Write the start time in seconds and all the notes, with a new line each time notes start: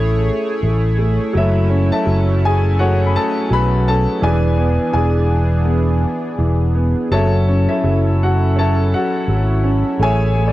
Already playing: A1 A3 C#4 E4 G#4 C#5
0.63 A1 A3
0.98 A3
1.33 F#1 F#3 A3 C#4
1.37 E4 A4 C#5 E5
1.70 C#4
1.92 A4 E5 A5
2.05 F#1 F#3
2.45 G#4 G#5
2.79 C#4 F#4 A4 C#5 F#5
3.06 B5
3.16 A4 A5
3.50 B1 F#3 B5
3.54 B4
3.88 C#4 A4 A5
4.21 E1 E3 B3 D4 G#4 B4 D5 G#5
4.57 B3
4.93 E1 E3 G#4 D5 G#5
5.65 B3
6.38 E1 E3
6.75 B3
7.09 F#1 F#3 C#4 E4 A4 C#5 A5
7.14 E5
7.48 C#4
7.69 E4 A4 E5
7.84 F#1 F#3
8.23 F#4 F#5
8.56 C#4 A4 C#5 A5
8.60 E5
8.94 F#4 F#5
9.28 G#1 F#3
9.63 C#4
9.99 A1 A3 G#4 C#5 G#5
10.04 G#4 C#5 E5
10.35 A3
10.48 D5